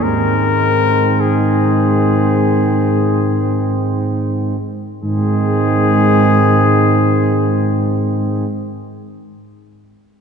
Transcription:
0.03 G#2 D#3 G#3 C4 A#4
1.20 G#4
5.04 G#2 D#3 G#3 C4 G#4

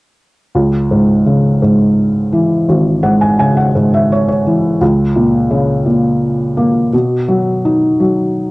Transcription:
0.55 C#2
0.91 G#2
1.26 C#3
1.62 G#2
2.33 E3
2.69 G#1
3.03 G#2 F#5
3.21 G#5
3.39 C#3 G#5
3.57 F#5
3.75 G#2
3.94 E5
4.12 C#5
4.28 C#5
4.47 E3
4.81 C#2
5.16 A#2
5.51 C#3
5.86 A#2
6.57 A#3
6.93 B2
7.28 F#3
7.65 D#4
8.00 F#3

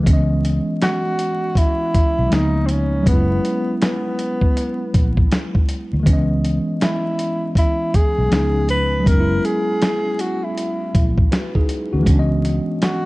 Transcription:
0.00 E3 G#3
0.06 C#2 B3 C#4, kick, closed hi-hat
0.13 D#5
0.45 closed hi-hat
0.82 F#4, snare, closed hi-hat
1.19 closed hi-hat
1.55 E4, kick, closed hi-hat
1.94 kick, closed hi-hat
2.19 B1
2.28 C#2 F3 G#3 A#3, closed hi-hat
2.33 B3 D#4, snare
2.66 C4, closed hi-hat
2.71 C#4
3.00 F#3 G#3
3.06 F#1 B3 C#4, kick, closed hi-hat
3.13 E4
3.45 closed hi-hat
3.82 B3, snare, closed hi-hat
4.19 closed hi-hat
4.41 kick
4.57 closed hi-hat
4.94 A#1, kick, closed hi-hat
5.17 kick
5.32 snare, closed hi-hat
5.55 kick
5.69 closed hi-hat
5.93 D2
6.00 D#3 G#3
6.06 C#2 E3 B3 C#4, kick, closed hi-hat
6.13 D#5
6.45 closed hi-hat
6.81 E4, snare, closed hi-hat
7.19 closed hi-hat
7.55 E4, kick, closed hi-hat
7.94 G#4, kick, closed hi-hat
8.18 B1
8.28 C#2 F3 G#3 C#4, closed hi-hat
8.33 B3 D#4, snare
8.69 B4, closed hi-hat
9.00 F#3 G#3
9.06 F#1 B3 C#4 A#4, kick, closed hi-hat
9.13 D#4
9.20 E4
9.45 G#4, closed hi-hat
9.82 snare, closed hi-hat
10.19 F#4, closed hi-hat
10.44 E4
10.58 closed hi-hat
10.95 A#1, kick, closed hi-hat
11.18 kick
11.32 F#4 B4, snare, closed hi-hat
11.55 D#4 G#4, kick
11.69 closed hi-hat
11.93 D2 C#4 F#4
11.99 E3 G#3
12.06 C#2 B3 C#4, kick, closed hi-hat
12.13 D4
12.19 D#5
12.45 closed hi-hat
12.82 F#4, snare, closed hi-hat

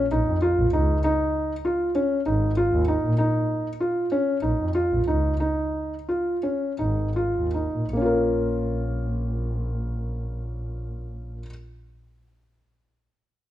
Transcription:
0.11 A#1 D#4
0.27 F2
0.42 F4
0.58 A#1
0.73 C#2 D#4
1.04 D#4
1.65 F4
1.95 C#4
2.26 G#1 D#4
2.57 F4
2.72 D#2
2.88 D#4
3.05 A#2
3.18 D#4
3.80 F4
4.12 C#4
4.42 A#1 D#4
4.61 F2
4.75 F4
4.92 A#1
5.07 C#2 D#4
5.40 D#4
6.09 F4
6.43 C#4
6.79 G#1 D#4
7.16 F4
7.35 D#2
7.54 D#4
7.75 A#2
7.93 A#1 A#3 C#4
8.01 F4
8.05 A#4

